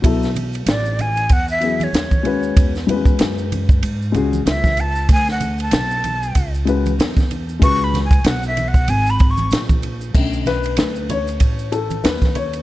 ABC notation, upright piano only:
X:1
M:4/4
L:1/8
Q:"Swing 16ths" 1/4=95
K:Bdor
V:1 name="Upright piano"
[F,B,EA] z4 [F,B,EG] z [G,CFB] | z [=G,^G,CFB]3 z [G,CFG] z2 | z4 z [G,CFB] z2 | [G,CFB] z6 z |
z B2 c2 A B c |]
V:2 name="Upright piano"
z8 | z8 | z8 | z8 |
[D,A,C]8 |]